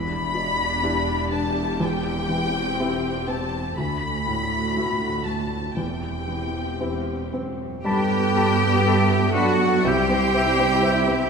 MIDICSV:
0, 0, Header, 1, 11, 480
1, 0, Start_track
1, 0, Key_signature, 1, "major"
1, 0, Tempo, 978793
1, 1851, Time_signature, 4, 2, 24, 8
1, 2337, Tempo, 1025641
1, 4257, Tempo, 988468
1, 5437, End_track
2, 0, Start_track
2, 0, Title_t, "Oboe"
2, 0, Program_c, 0, 68
2, 3782, Note_on_c, 0, 83, 51
2, 3857, Note_off_c, 0, 83, 0
2, 4023, Note_on_c, 0, 83, 47
2, 4098, Note_off_c, 0, 83, 0
2, 4264, Note_on_c, 0, 83, 46
2, 4342, Note_off_c, 0, 83, 0
2, 4501, Note_on_c, 0, 83, 46
2, 4579, Note_off_c, 0, 83, 0
2, 4745, Note_on_c, 0, 79, 52
2, 4823, Note_off_c, 0, 79, 0
2, 4983, Note_on_c, 0, 79, 47
2, 5060, Note_off_c, 0, 79, 0
2, 5221, Note_on_c, 0, 79, 50
2, 5298, Note_off_c, 0, 79, 0
2, 5437, End_track
3, 0, Start_track
3, 0, Title_t, "Clarinet"
3, 0, Program_c, 1, 71
3, 3783, Note_on_c, 1, 81, 51
3, 3858, Note_off_c, 1, 81, 0
3, 4018, Note_on_c, 1, 81, 52
3, 4093, Note_off_c, 1, 81, 0
3, 4257, Note_on_c, 1, 81, 53
3, 4335, Note_off_c, 1, 81, 0
3, 4512, Note_on_c, 1, 81, 49
3, 4590, Note_off_c, 1, 81, 0
3, 4740, Note_on_c, 1, 76, 51
3, 4818, Note_off_c, 1, 76, 0
3, 4984, Note_on_c, 1, 76, 48
3, 5061, Note_off_c, 1, 76, 0
3, 5212, Note_on_c, 1, 76, 51
3, 5289, Note_off_c, 1, 76, 0
3, 5437, End_track
4, 0, Start_track
4, 0, Title_t, "Violin section"
4, 0, Program_c, 2, 48
4, 0, Note_on_c, 2, 83, 81
4, 634, Note_off_c, 2, 83, 0
4, 651, Note_on_c, 2, 81, 67
4, 890, Note_off_c, 2, 81, 0
4, 891, Note_on_c, 2, 79, 82
4, 1611, Note_off_c, 2, 79, 0
4, 1615, Note_on_c, 2, 81, 65
4, 1853, Note_off_c, 2, 81, 0
4, 1857, Note_on_c, 2, 83, 78
4, 2560, Note_off_c, 2, 83, 0
4, 2566, Note_on_c, 2, 81, 57
4, 2808, Note_on_c, 2, 79, 49
4, 2809, Note_off_c, 2, 81, 0
4, 3539, Note_off_c, 2, 79, 0
4, 3780, Note_on_c, 2, 79, 74
4, 4480, Note_off_c, 2, 79, 0
4, 4493, Note_on_c, 2, 78, 70
4, 4738, Note_off_c, 2, 78, 0
4, 4741, Note_on_c, 2, 79, 81
4, 5437, Note_off_c, 2, 79, 0
4, 5437, End_track
5, 0, Start_track
5, 0, Title_t, "Violin section"
5, 0, Program_c, 3, 48
5, 3783, Note_on_c, 3, 79, 69
5, 4481, Note_off_c, 3, 79, 0
5, 4506, Note_on_c, 3, 78, 66
5, 4737, Note_on_c, 3, 79, 78
5, 4744, Note_off_c, 3, 78, 0
5, 5437, Note_off_c, 3, 79, 0
5, 5437, End_track
6, 0, Start_track
6, 0, Title_t, "Flute section"
6, 0, Program_c, 4, 73
6, 3784, Note_on_c, 4, 71, 58
6, 4239, Note_off_c, 4, 71, 0
6, 4256, Note_on_c, 4, 76, 65
6, 4499, Note_on_c, 4, 74, 52
6, 4500, Note_off_c, 4, 76, 0
6, 4739, Note_on_c, 4, 72, 64
6, 4740, Note_off_c, 4, 74, 0
6, 5217, Note_off_c, 4, 72, 0
6, 5219, Note_on_c, 4, 76, 65
6, 5437, Note_off_c, 4, 76, 0
6, 5437, End_track
7, 0, Start_track
7, 0, Title_t, "Viola section"
7, 0, Program_c, 5, 48
7, 0, Note_on_c, 5, 62, 62
7, 0, Note_on_c, 5, 67, 63
7, 871, Note_off_c, 5, 62, 0
7, 885, Note_on_c, 5, 60, 64
7, 1828, Note_off_c, 5, 60, 0
7, 1830, Note_off_c, 5, 67, 0
7, 1852, Note_on_c, 5, 66, 53
7, 1853, Note_on_c, 5, 57, 53
7, 2793, Note_off_c, 5, 66, 0
7, 2794, Note_off_c, 5, 57, 0
7, 2811, Note_on_c, 5, 60, 42
7, 2811, Note_on_c, 5, 67, 43
7, 3666, Note_off_c, 5, 60, 0
7, 3666, Note_off_c, 5, 67, 0
7, 3782, Note_on_c, 5, 69, 60
7, 3783, Note_on_c, 5, 59, 63
7, 4722, Note_off_c, 5, 59, 0
7, 4722, Note_off_c, 5, 69, 0
7, 4739, Note_on_c, 5, 64, 62
7, 4740, Note_on_c, 5, 60, 60
7, 5437, Note_off_c, 5, 60, 0
7, 5437, Note_off_c, 5, 64, 0
7, 5437, End_track
8, 0, Start_track
8, 0, Title_t, "Felt piano"
8, 0, Program_c, 6, 0
8, 0, Note_on_c, 6, 40, 49
8, 22, Control_c, 6, 64, 127
8, 167, Note_on_c, 6, 47, 39
8, 406, Note_on_c, 6, 62, 40
8, 408, Note_on_c, 6, 64, 41
8, 412, Note_on_c, 6, 67, 46
8, 553, Note_off_c, 6, 47, 0
8, 629, Note_off_c, 6, 62, 0
8, 630, Note_off_c, 6, 64, 0
8, 632, Note_off_c, 6, 67, 0
8, 648, Note_on_c, 6, 62, 37
8, 868, Note_off_c, 6, 40, 0
8, 885, Note_on_c, 6, 40, 52
8, 889, Note_off_c, 6, 62, 0
8, 900, Control_c, 6, 64, 0
8, 965, Control_c, 6, 64, 127
8, 1124, Note_on_c, 6, 52, 41
8, 1372, Note_on_c, 6, 60, 38
8, 1373, Note_on_c, 6, 64, 39
8, 1373, Note_on_c, 6, 67, 41
8, 1512, Note_off_c, 6, 52, 0
8, 1592, Note_off_c, 6, 60, 0
8, 1593, Note_off_c, 6, 64, 0
8, 1593, Note_off_c, 6, 67, 0
8, 1608, Note_on_c, 6, 60, 43
8, 1828, Note_off_c, 6, 40, 0
8, 1850, Note_off_c, 6, 60, 0
8, 1852, Note_on_c, 6, 38, 44
8, 1860, Control_c, 6, 64, 0
8, 1929, Control_c, 6, 64, 127
8, 2092, Note_on_c, 6, 45, 35
8, 2338, Note_on_c, 6, 57, 32
8, 2339, Note_on_c, 6, 64, 32
8, 2342, Note_on_c, 6, 66, 36
8, 2476, Note_off_c, 6, 45, 0
8, 2554, Note_off_c, 6, 57, 0
8, 2554, Note_off_c, 6, 64, 0
8, 2556, Note_off_c, 6, 66, 0
8, 2567, Note_on_c, 6, 57, 29
8, 2793, Note_off_c, 6, 38, 0
8, 2806, Note_on_c, 6, 40, 36
8, 2809, Note_off_c, 6, 57, 0
8, 2819, Control_c, 6, 64, 0
8, 2913, Control_c, 6, 64, 127
8, 3045, Note_on_c, 6, 52, 27
8, 3292, Note_on_c, 6, 60, 27
8, 3294, Note_on_c, 6, 64, 25
8, 3297, Note_on_c, 6, 67, 29
8, 3438, Note_off_c, 6, 52, 0
8, 3519, Note_off_c, 6, 60, 0
8, 3520, Note_off_c, 6, 64, 0
8, 3521, Note_off_c, 6, 67, 0
8, 3540, Note_on_c, 6, 60, 29
8, 3760, Note_off_c, 6, 40, 0
8, 3779, Note_on_c, 6, 43, 54
8, 3781, Note_off_c, 6, 60, 0
8, 3789, Control_c, 6, 64, 0
8, 3880, Control_c, 6, 64, 127
8, 3897, Note_on_c, 6, 59, 40
8, 4014, Note_on_c, 6, 69, 44
8, 4089, Note_off_c, 6, 59, 0
8, 4132, Note_on_c, 6, 59, 39
8, 4206, Note_off_c, 6, 69, 0
8, 4251, Note_on_c, 6, 69, 49
8, 4327, Note_off_c, 6, 59, 0
8, 4371, Note_on_c, 6, 59, 41
8, 4449, Note_off_c, 6, 69, 0
8, 4489, Note_on_c, 6, 62, 45
8, 4569, Note_off_c, 6, 59, 0
8, 4614, Note_on_c, 6, 59, 43
8, 4688, Note_off_c, 6, 62, 0
8, 4721, Note_off_c, 6, 43, 0
8, 4732, Note_on_c, 6, 36, 53
8, 4737, Note_off_c, 6, 59, 0
8, 4749, Control_c, 6, 64, 0
8, 4835, Control_c, 6, 64, 127
8, 4852, Note_on_c, 6, 60, 43
8, 4974, Note_on_c, 6, 72, 44
8, 5047, Note_off_c, 6, 60, 0
8, 5094, Note_on_c, 6, 60, 44
8, 5168, Note_off_c, 6, 72, 0
8, 5209, Note_on_c, 6, 72, 47
8, 5287, Note_off_c, 6, 60, 0
8, 5328, Note_on_c, 6, 60, 47
8, 5404, Note_off_c, 6, 72, 0
8, 5437, Note_off_c, 6, 36, 0
8, 5437, Note_off_c, 6, 60, 0
8, 5437, End_track
9, 0, Start_track
9, 0, Title_t, "French horn section"
9, 0, Program_c, 7, 60
9, 3787, Note_on_c, 7, 55, 75
9, 4484, Note_off_c, 7, 55, 0
9, 4502, Note_on_c, 7, 54, 67
9, 4742, Note_off_c, 7, 54, 0
9, 4743, Note_on_c, 7, 55, 71
9, 5437, Note_off_c, 7, 55, 0
9, 5437, End_track
10, 0, Start_track
10, 0, Title_t, "Cello section"
10, 0, Program_c, 8, 48
10, 0, Note_on_c, 8, 40, 56
10, 1849, Note_off_c, 8, 40, 0
10, 1849, Note_on_c, 8, 38, 51
10, 2792, Note_off_c, 8, 38, 0
10, 2812, Note_on_c, 8, 40, 41
10, 3240, Note_off_c, 8, 40, 0
10, 3298, Note_on_c, 8, 40, 42
10, 3524, Note_off_c, 8, 40, 0
10, 3537, Note_on_c, 8, 42, 40
10, 3776, Note_on_c, 8, 67, 83
10, 3779, Note_off_c, 8, 42, 0
10, 4478, Note_off_c, 8, 67, 0
10, 4496, Note_on_c, 8, 66, 80
10, 4739, Note_off_c, 8, 66, 0
10, 4741, Note_on_c, 8, 67, 85
10, 5437, Note_off_c, 8, 67, 0
10, 5437, End_track
11, 0, Start_track
11, 0, Title_t, "Double bass section"
11, 0, Program_c, 10, 48
11, 0, Note_on_c, 10, 28, 58
11, 1848, Note_off_c, 10, 28, 0
11, 1852, Note_on_c, 10, 38, 50
11, 2793, Note_off_c, 10, 38, 0
11, 2812, Note_on_c, 10, 28, 37
11, 3668, Note_off_c, 10, 28, 0
11, 3783, Note_on_c, 10, 43, 62
11, 4723, Note_off_c, 10, 43, 0
11, 4742, Note_on_c, 10, 36, 60
11, 5437, Note_off_c, 10, 36, 0
11, 5437, End_track
0, 0, End_of_file